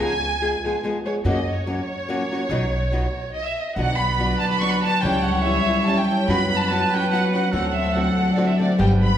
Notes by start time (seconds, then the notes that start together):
0.00 C#2 C#3 F3 G#3 B3 G#4 G#5
0.41 F3 G#3 B3 G#4
0.64 F3 G#3 B3 G#4
0.83 F3 G#3 B3 G#4
1.06 F3 G#3 B3 G#4 C#5
1.24 F#2 C#3 F#3 A#3 C#4 F#4 D#5
1.49 C#5
1.67 F#3 A#3 C#4 F#4
2.09 F#3 A#3 C#4 F#4
2.31 F#3 A#3 C#4 F#4
2.49 B1 B2 F#3 B3 D#4 F#4
2.91 F#3 B3 D#4 F#4
3.33 D#5
3.44 E5
3.56 D#5
3.76 B1 B2 D3 F#3 B3 D4 F#4 B4 D5 F#5
3.97 F#3 B5
4.19 F#3 B3 D4 F#4
4.40 D4 A5
4.50 B5
4.60 F#3 B3 D4 F#4 C#6
4.71 B5
4.83 F#3 B3 D4 F#4 B4 A5
5.02 C#2 C#3 E3 G3 C#4 E4 G4 C#5 E5 G5
5.23 G3 F#5
5.43 E3 G3 C#4 E4 E5
5.66 E3 G3 C#4 E4
5.85 E3 G3 C#4 E4 G4 A5
5.97 G5
6.08 C#5 G5
6.20 C#5
6.26 F#2 C#3 F#3 B3 C#4 F#4 B4 B5
6.30 F#4
6.49 B3 B5
6.56 A5
6.62 B5
6.70 F#3 B3 C#4 F#4 A5
6.92 F#3 B3 C#4 F#4 G5
7.11 F#3 B3 C#4 F#4 B4 F#5
7.33 F#3 B3 C#4 F#4 C#5 F#5
7.52 D2 D3 F#3 A3 C4 D4 F#4 A4 C5 F#5
7.69 F#5
7.75 C4 E5
7.94 D3 A3 C4 D4 F#4 F#5
8.17 D3 A3 C4 F#4
8.36 D3 A3 C4 F#4 C5 D5
8.47 E5
8.59 D3 A3 C4 F#4 D5
8.77 G1 G2 D3 G3 B3 D4 G4 B4 G5
9.01 B3 B5